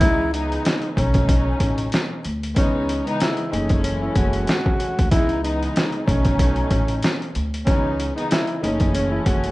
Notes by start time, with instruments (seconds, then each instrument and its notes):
0.00 string section C#2 E3 G#3 B3 D#4, upright bass C#2, tenor saxophone E4, kick, closed hi-hat
0.32 string section C#2 E3 G#3 B3 D#4, tenor saxophone D#4, closed hi-hat
0.52 closed hi-hat
0.65 snare, closed hi-hat
0.82 closed hi-hat
0.95 upright bass B1, string section B2 F#3 A3 C#4 D#4, tenor saxophone C#4, kick, closed hi-hat
1.14 kick, closed hi-hat
1.29 kick, closed hi-hat
1.60 upright bass A1, tenor saxophone C#4, kick, closed hi-hat
1.78 closed hi-hat
1.92 snare, closed hi-hat
2.24 upright bass D2, closed hi-hat
2.43 closed hi-hat
2.55 string section C#2 E3 G#3 B3 D#4, upright bass C#2, tenor saxophone C#4, kick, closed hi-hat
2.89 closed hi-hat
3.05 string section C#2 E3 G#3 B3 D#4, tenor saxophone D#4, closed hi-hat
3.20 tenor saxophone E4, snare, closed hi-hat
3.37 closed hi-hat
3.51 upright bass F#1, string section F#2 E3 G#3 A3 C#4, tenor saxophone D#4, closed hi-hat
3.69 kick, closed hi-hat
3.84 tenor saxophone C#4, closed hi-hat
4.02 tenor saxophone E4
4.15 upright bass F#1, tenor saxophone F#4, kick, closed hi-hat
4.33 closed hi-hat
4.47 snare, closed hi-hat
4.66 kick
4.80 closed hi-hat
4.99 upright bass D2, kick, closed hi-hat
5.11 string section C#2 E3 G#3 B3 D#4, upright bass C#2, tenor saxophone E4, kick, closed hi-hat
5.29 closed hi-hat
5.43 string section C#2 E3 G#3 B3 D#4, tenor saxophone D#4, closed hi-hat
5.63 closed hi-hat
5.76 snare, closed hi-hat
5.92 closed hi-hat
6.05 upright bass B1, string section B2 F#3 A3 C#4 D#4, tenor saxophone C#4, kick, closed hi-hat
6.25 kick, closed hi-hat
6.39 kick, closed hi-hat
6.56 closed hi-hat
6.71 upright bass A1, tenor saxophone C#4, kick, closed hi-hat
6.88 closed hi-hat
7.03 snare, closed hi-hat
7.22 closed hi-hat
7.35 upright bass D2, closed hi-hat
7.54 closed hi-hat
7.66 string section C#2 E3 G#3 B3 D#4, upright bass C#2, tenor saxophone C#4, kick, closed hi-hat
8.00 closed hi-hat
8.15 string section C#2 E3 G#3 B3 D#4, tenor saxophone D#4, closed hi-hat
8.31 tenor saxophone E4, snare, closed hi-hat
8.47 closed hi-hat
8.61 upright bass F#1, string section F#2 E3 G#3 A3 C#4, tenor saxophone D#4, closed hi-hat
8.80 kick, closed hi-hat
8.95 tenor saxophone C#4, closed hi-hat
9.12 tenor saxophone E4
9.26 upright bass F#1, tenor saxophone F#4, kick, closed hi-hat
9.44 closed hi-hat